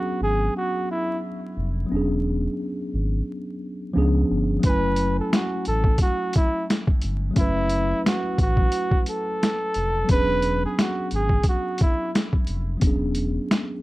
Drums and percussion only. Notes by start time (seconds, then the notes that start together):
4.63 kick, closed hi-hat
4.96 closed hi-hat
5.33 snare, closed hi-hat
5.65 closed hi-hat
5.84 kick
5.98 kick, closed hi-hat
6.33 kick, closed hi-hat
6.70 snare, closed hi-hat
6.87 kick
7.01 closed hi-hat
7.36 kick, closed hi-hat
7.70 closed hi-hat
8.06 snare, closed hi-hat
8.38 kick, closed hi-hat
8.57 kick
8.72 closed hi-hat
8.91 kick
9.06 closed hi-hat
9.43 snare, closed hi-hat
9.74 closed hi-hat
10.09 kick, closed hi-hat
10.42 closed hi-hat
10.79 snare, closed hi-hat
11.11 closed hi-hat
11.29 kick
11.43 kick, closed hi-hat
11.78 kick, closed hi-hat
12.15 snare, closed hi-hat
12.33 kick
12.47 closed hi-hat
12.81 kick, closed hi-hat
13.15 closed hi-hat
13.51 snare, closed hi-hat